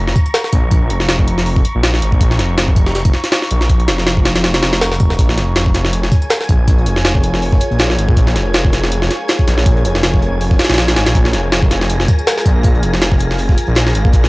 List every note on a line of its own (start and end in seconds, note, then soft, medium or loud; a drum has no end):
0.00 0.14 F1 medium
0.00 5.20 A#5 medium
0.00 5.21 C#6 medium
0.07 snare soft
0.16 kick medium
0.16 closed hi-hat medium
0.26 closed hi-hat soft
0.34 snare loud
0.34 closed hi-hat medium
0.44 snare soft
0.53 0.92 A#1 medium
0.53 kick medium
0.53 closed hi-hat medium
0.71 kick loud
0.71 closed hi-hat medium
0.90 1.64 F1 medium
0.90 closed hi-hat medium
1.00 snare medium
1.09 snare loud
1.09 closed hi-hat medium
1.19 kick medium
1.28 closed hi-hat medium
1.38 snare soft
1.46 open hi-hat medium
1.56 kick medium
1.65 closed hi-hat medium
1.75 2.01 A#1 medium
1.83 snare loud
1.83 closed hi-hat medium
1.94 snare medium
2.02 2.11 G#1 loud
2.02 closed hi-hat medium
2.12 2.20 A#1 medium
2.12 kick medium
2.21 2.41 A#1 loud
2.21 kick loud
2.21 closed hi-hat medium
2.31 snare soft
2.39 3.12 F1 medium
2.39 snare soft
2.39 closed hi-hat medium
2.58 snare loud
2.58 closed hi-hat medium
2.68 kick medium
2.76 kick medium
2.76 closed hi-hat medium
2.86 snare soft
2.95 snare soft
2.95 closed hi-hat medium
3.05 kick loud
3.05 closed hi-hat medium
3.13 snare soft
3.24 snare soft
3.24 closed hi-hat medium
3.32 snare loud
3.32 closed hi-hat medium
3.42 snare soft
3.51 3.90 A#1 medium
3.51 closed hi-hat medium
3.61 snare soft
3.69 kick medium
3.69 closed hi-hat medium
3.80 closed hi-hat soft
3.88 4.62 F1 medium
3.88 snare loud
3.88 closed hi-hat medium
3.98 snare soft
4.07 snare loud
4.07 closed hi-hat medium
4.17 kick medium
4.25 snare medium
4.25 closed hi-hat medium
4.36 snare loud
4.36 closed hi-hat medium
4.44 snare loud
4.44 closed hi-hat medium
4.54 snare loud
4.54 closed hi-hat medium
4.63 5.17 F1 loud
4.63 snare loud
4.63 closed hi-hat medium
4.73 snare loud
4.73 closed hi-hat medium
4.81 snare loud
4.81 closed hi-hat medium
4.92 snare medium
5.00 kick medium
5.00 closed hi-hat medium
5.10 snare soft
5.19 5.39 A#1 loud
5.19 14.29 F4 medium
5.19 14.29 G#4 medium
5.19 14.29 A#4 medium
5.19 11.13 C#5 medium
5.19 14.29 G#5 medium
5.19 11.17 G#6 medium
5.19 kick loud
5.19 closed hi-hat medium
5.29 snare soft
5.37 6.11 F1 medium
5.37 snare soft
5.37 closed hi-hat medium
5.55 snare loud
5.55 closed hi-hat medium
5.66 kick medium
5.74 snare medium
5.74 closed hi-hat medium
5.84 snare soft
5.84 snare medium
5.93 closed hi-hat medium
6.03 snare soft
6.12 kick medium
6.12 closed hi-hat medium
6.22 closed hi-hat soft
6.30 snare loud
6.30 closed hi-hat medium
6.41 snare soft
6.41 closed hi-hat soft
6.49 6.88 A#1 medium
6.49 kick medium
6.49 closed hi-hat medium
6.68 kick loud
6.68 closed hi-hat medium
6.78 closed hi-hat soft
6.86 7.60 F1 medium
6.86 closed hi-hat medium
6.96 snare medium
7.04 snare loud
7.04 closed hi-hat medium
7.15 kick medium
7.15 snare soft
7.23 closed hi-hat medium
7.34 snare soft
7.42 closed hi-hat medium
7.42 open hi-hat medium
7.52 kick medium
7.52 snare medium
7.60 closed hi-hat medium
7.71 7.97 A#1 medium
7.71 closed hi-hat soft
7.79 snare loud
7.79 closed hi-hat medium
7.90 snare medium
7.98 8.08 G#1 loud
7.98 closed hi-hat medium
8.08 8.16 A#1 medium
8.08 kick medium
8.16 8.37 A#1 loud
8.16 kick loud
8.16 closed hi-hat medium
8.27 snare soft
8.35 9.09 F1 medium
8.35 snare soft
8.35 closed hi-hat medium
8.53 snare loud
8.53 closed hi-hat medium
8.65 kick medium
8.72 snare medium
8.72 closed hi-hat medium
8.83 snare soft
8.83 snare medium
8.91 closed hi-hat medium
9.02 snare soft
9.10 snare soft
9.10 closed hi-hat medium
9.28 snare loud
9.28 closed hi-hat medium
9.39 kick medium
9.39 closed hi-hat soft
9.47 9.86 A#1 medium
9.47 snare soft
9.47 closed hi-hat medium
9.58 snare medium
9.66 kick loud
9.66 closed hi-hat medium
9.77 closed hi-hat soft
9.85 10.58 F1 medium
9.85 closed hi-hat medium
9.95 snare medium
10.03 snare loud
10.03 closed hi-hat medium
10.14 kick medium
10.14 snare medium
10.22 closed hi-hat medium
10.41 closed hi-hat medium
10.41 open hi-hat medium
10.50 kick medium
10.50 snare medium
10.59 snare loud
10.59 snare medium
10.59 closed hi-hat medium
10.64 snare medium
10.64 closed hi-hat medium
10.69 10.95 A#1 medium
10.69 snare medium
10.69 closed hi-hat medium
10.74 snare medium
10.74 closed hi-hat medium
10.78 snare loud
10.78 closed hi-hat medium
10.88 snare loud
10.88 closed hi-hat medium
10.96 11.06 G#1 loud
10.96 snare loud
10.96 closed hi-hat medium
11.06 11.14 A#1 medium
11.06 snare loud
11.06 closed hi-hat medium
11.15 11.35 A#1 loud
11.15 14.29 F5 medium
11.15 14.29 A#6 medium
11.15 kick loud
11.15 closed hi-hat medium
11.25 snare medium
11.33 12.07 F1 medium
11.33 snare soft
11.33 closed hi-hat medium
11.52 snare loud
11.52 closed hi-hat medium
11.63 kick medium
11.71 snare medium
11.71 closed hi-hat medium
11.81 snare soft
11.81 snare medium
11.90 closed hi-hat medium
12.00 snare soft
12.08 kick medium
12.08 closed hi-hat medium
12.19 closed hi-hat soft
12.27 snare loud
12.27 closed hi-hat medium
12.37 snare soft
12.37 closed hi-hat soft
12.45 12.84 A#1 medium
12.45 kick medium
12.45 closed hi-hat medium
12.63 kick loud
12.63 closed hi-hat medium
12.75 closed hi-hat soft
12.83 13.56 F1 medium
12.83 closed hi-hat medium
12.94 snare medium
13.01 snare loud
13.01 closed hi-hat medium
13.11 kick medium
13.11 snare medium
13.19 closed hi-hat medium
13.31 snare soft
13.38 closed hi-hat medium
13.38 open hi-hat medium
13.49 kick medium
13.49 snare medium
13.58 closed hi-hat medium
13.67 13.93 A#1 loud
13.67 closed hi-hat soft
13.75 snare loud
13.75 closed hi-hat medium
13.87 snare medium
13.94 14.04 G#1 loud
13.94 closed hi-hat medium
14.05 14.12 A#1 medium
14.05 kick medium
14.13 14.29 A#1 loud
14.13 kick loud
14.13 closed hi-hat medium
14.24 snare soft